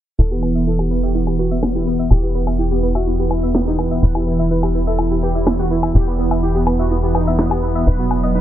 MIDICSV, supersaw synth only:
0, 0, Header, 1, 2, 480
1, 0, Start_track
1, 0, Key_signature, 1, "minor"
1, 0, Tempo, 480000
1, 187, Time_signature, 4, 2, 24, 8
1, 8408, End_track
2, 0, Start_track
2, 0, Title_t, "Supersaw synth"
2, 0, Program_c, 0, 81
2, 187, Note_on_c, 0, 69, 95
2, 252, Note_off_c, 0, 69, 0
2, 311, Note_on_c, 0, 59, 63
2, 372, Note_off_c, 0, 59, 0
2, 427, Note_on_c, 0, 59, 60
2, 492, Note_off_c, 0, 59, 0
2, 551, Note_on_c, 0, 59, 59
2, 611, Note_off_c, 0, 59, 0
2, 666, Note_on_c, 0, 69, 92
2, 731, Note_off_c, 0, 69, 0
2, 791, Note_on_c, 0, 59, 59
2, 851, Note_off_c, 0, 59, 0
2, 904, Note_on_c, 0, 59, 61
2, 970, Note_off_c, 0, 59, 0
2, 1026, Note_on_c, 0, 67, 86
2, 1089, Note_off_c, 0, 67, 0
2, 1144, Note_on_c, 0, 59, 60
2, 1211, Note_off_c, 0, 59, 0
2, 1268, Note_on_c, 0, 59, 59
2, 1330, Note_off_c, 0, 59, 0
2, 1383, Note_on_c, 0, 66, 86
2, 1450, Note_off_c, 0, 66, 0
2, 1507, Note_on_c, 0, 59, 61
2, 1570, Note_off_c, 0, 59, 0
2, 1624, Note_on_c, 0, 59, 58
2, 1690, Note_off_c, 0, 59, 0
2, 1747, Note_on_c, 0, 64, 85
2, 1810, Note_off_c, 0, 64, 0
2, 1864, Note_on_c, 0, 59, 62
2, 1930, Note_off_c, 0, 59, 0
2, 1987, Note_on_c, 0, 59, 61
2, 2050, Note_off_c, 0, 59, 0
2, 2104, Note_on_c, 0, 67, 96
2, 2170, Note_off_c, 0, 67, 0
2, 2226, Note_on_c, 0, 59, 62
2, 2289, Note_off_c, 0, 59, 0
2, 2345, Note_on_c, 0, 59, 60
2, 2411, Note_off_c, 0, 59, 0
2, 2468, Note_on_c, 0, 59, 58
2, 2530, Note_off_c, 0, 59, 0
2, 2584, Note_on_c, 0, 67, 86
2, 2650, Note_off_c, 0, 67, 0
2, 2709, Note_on_c, 0, 59, 60
2, 2771, Note_off_c, 0, 59, 0
2, 2824, Note_on_c, 0, 59, 62
2, 2891, Note_off_c, 0, 59, 0
2, 2948, Note_on_c, 0, 66, 86
2, 3010, Note_off_c, 0, 66, 0
2, 3064, Note_on_c, 0, 59, 61
2, 3130, Note_off_c, 0, 59, 0
2, 3189, Note_on_c, 0, 59, 60
2, 3251, Note_off_c, 0, 59, 0
2, 3305, Note_on_c, 0, 64, 87
2, 3371, Note_off_c, 0, 64, 0
2, 3429, Note_on_c, 0, 59, 61
2, 3491, Note_off_c, 0, 59, 0
2, 3547, Note_on_c, 0, 59, 60
2, 3612, Note_off_c, 0, 59, 0
2, 3669, Note_on_c, 0, 63, 90
2, 3731, Note_off_c, 0, 63, 0
2, 3785, Note_on_c, 0, 59, 63
2, 3851, Note_off_c, 0, 59, 0
2, 3910, Note_on_c, 0, 59, 64
2, 3971, Note_off_c, 0, 59, 0
2, 4025, Note_on_c, 0, 71, 91
2, 4091, Note_off_c, 0, 71, 0
2, 4149, Note_on_c, 0, 64, 62
2, 4211, Note_off_c, 0, 64, 0
2, 4264, Note_on_c, 0, 64, 57
2, 4330, Note_off_c, 0, 64, 0
2, 4388, Note_on_c, 0, 64, 59
2, 4450, Note_off_c, 0, 64, 0
2, 4504, Note_on_c, 0, 71, 87
2, 4570, Note_off_c, 0, 71, 0
2, 4629, Note_on_c, 0, 64, 61
2, 4691, Note_off_c, 0, 64, 0
2, 4745, Note_on_c, 0, 64, 62
2, 4811, Note_off_c, 0, 64, 0
2, 4869, Note_on_c, 0, 69, 84
2, 4931, Note_off_c, 0, 69, 0
2, 4988, Note_on_c, 0, 64, 60
2, 5052, Note_off_c, 0, 64, 0
2, 5111, Note_on_c, 0, 64, 60
2, 5171, Note_off_c, 0, 64, 0
2, 5226, Note_on_c, 0, 67, 89
2, 5291, Note_off_c, 0, 67, 0
2, 5348, Note_on_c, 0, 64, 61
2, 5410, Note_off_c, 0, 64, 0
2, 5464, Note_on_c, 0, 64, 61
2, 5530, Note_off_c, 0, 64, 0
2, 5587, Note_on_c, 0, 66, 88
2, 5650, Note_off_c, 0, 66, 0
2, 5704, Note_on_c, 0, 64, 62
2, 5770, Note_off_c, 0, 64, 0
2, 5828, Note_on_c, 0, 64, 61
2, 5890, Note_off_c, 0, 64, 0
2, 5943, Note_on_c, 0, 67, 93
2, 6010, Note_off_c, 0, 67, 0
2, 6066, Note_on_c, 0, 59, 62
2, 6129, Note_off_c, 0, 59, 0
2, 6184, Note_on_c, 0, 59, 58
2, 6250, Note_off_c, 0, 59, 0
2, 6308, Note_on_c, 0, 59, 57
2, 6370, Note_off_c, 0, 59, 0
2, 6425, Note_on_c, 0, 67, 90
2, 6491, Note_off_c, 0, 67, 0
2, 6548, Note_on_c, 0, 59, 59
2, 6610, Note_off_c, 0, 59, 0
2, 6666, Note_on_c, 0, 59, 64
2, 6731, Note_off_c, 0, 59, 0
2, 6789, Note_on_c, 0, 66, 85
2, 6851, Note_off_c, 0, 66, 0
2, 6908, Note_on_c, 0, 59, 61
2, 6972, Note_off_c, 0, 59, 0
2, 7031, Note_on_c, 0, 59, 59
2, 7092, Note_off_c, 0, 59, 0
2, 7147, Note_on_c, 0, 63, 88
2, 7212, Note_off_c, 0, 63, 0
2, 7272, Note_on_c, 0, 59, 61
2, 7332, Note_off_c, 0, 59, 0
2, 7389, Note_on_c, 0, 59, 58
2, 7453, Note_off_c, 0, 59, 0
2, 7513, Note_on_c, 0, 59, 83
2, 7572, Note_off_c, 0, 59, 0
2, 7629, Note_on_c, 0, 59, 61
2, 7693, Note_off_c, 0, 59, 0
2, 7754, Note_on_c, 0, 59, 62
2, 7813, Note_off_c, 0, 59, 0
2, 7869, Note_on_c, 0, 71, 93
2, 7933, Note_off_c, 0, 71, 0
2, 7992, Note_on_c, 0, 59, 61
2, 8052, Note_off_c, 0, 59, 0
2, 8107, Note_on_c, 0, 59, 60
2, 8172, Note_off_c, 0, 59, 0
2, 8232, Note_on_c, 0, 59, 59
2, 8292, Note_off_c, 0, 59, 0
2, 8348, Note_on_c, 0, 71, 87
2, 8408, Note_off_c, 0, 71, 0
2, 8408, End_track
0, 0, End_of_file